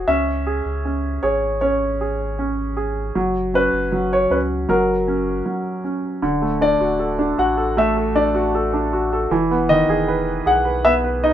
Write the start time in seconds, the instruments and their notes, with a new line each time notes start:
0.08 sub bass C#2, grand piano C#4 E5
0.47 grand piano G#4
0.66 sub bass C#2
0.85 grand piano C#4
1.23 sub bass G#1, grand piano G#4 C#5
1.61 grand piano C#4 C#5
2.01 grand piano G#4
2.39 grand piano C#4
2.77 grand piano G#4
3.15 sub bass F#1, grand piano F#3
3.54 grand piano C#4 B4
3.73 sub bass F#1
3.92 grand piano F#3
4.13 grand piano C#5
4.30 sub bass C#2, grand piano C#4 B4
4.69 sub bass F#1, grand piano F#3 A#4
5.08 grand piano C#4
5.46 grand piano F#3
5.84 grand piano C#4
6.22 sub bass D1, grand piano D3
6.42 grand piano A3
6.61 grand piano D4 D5
6.80 sub bass D1, grand piano F#4
6.99 grand piano A4
7.19 grand piano D4
7.38 sub bass A1, grand piano F#4 F#5
7.57 grand piano A4
7.77 grand piano A3 E5
7.97 grand piano A4
8.15 grand piano D4 D5
8.35 grand piano F#4
8.55 grand piano A4
8.74 grand piano D4
8.93 grand piano F#4
9.13 grand piano A4
9.30 sub bass E1, grand piano E3
9.51 grand piano B3
9.69 grand piano D#3 D#5
9.88 sub bass E1, grand piano G#4
10.08 grand piano B4
10.46 sub bass B1, grand piano G#4 F#5
10.65 grand piano B4
10.85 grand piano B3 E5
11.04 grand piano B4
11.24 grand piano D#4 D#5